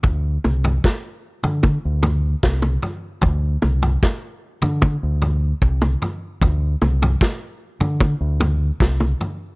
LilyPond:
<<
  \new Staff \with { instrumentName = "Fingered electric bass" } { \clef bass \time 4/4 \tempo 4 = 75 d,8 c,8 r8. d8 d,8. c,8 r8 | d,8 c,8 r8. d8 d,8. c,8 r8 | d,8 c,8 r8. d8 d,8. c,8 r8 | }
  \new DrumStaff \with { instrumentName = "Drums" } \drummode { \time 4/4 <bd tomfh>8 toml16 tomfh16 <bd sn>8. tomfh16 <bd toml>8 <tomfh toml>8 <bd sn>16 toml16 tomfh8 | <bd tomfh>8 toml16 tomfh16 <bd sn>8. tomfh16 <bd toml>8 tomfh8 bd16 toml16 tomfh8 | <bd tomfh>8 toml16 tomfh16 <bd sn>8. tomfh16 <bd toml>8 <tomfh toml>8 <bd sn>16 toml16 tomfh8 | }
>>